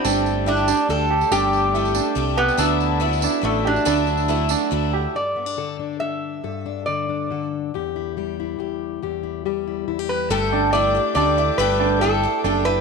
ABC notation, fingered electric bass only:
X:1
M:3/4
L:1/8
Q:1/4=141
K:Em
V:1 name="Fingered electric bass" clef=bass
G,,,4 D,,2 | G,,,4 C,,2 | D,,4 A,,,2 | D,,4 D,,2 |
z6 | z6 | z6 | z6 |
G,,,4 D,,2 | G,,,4 F,,,2 |]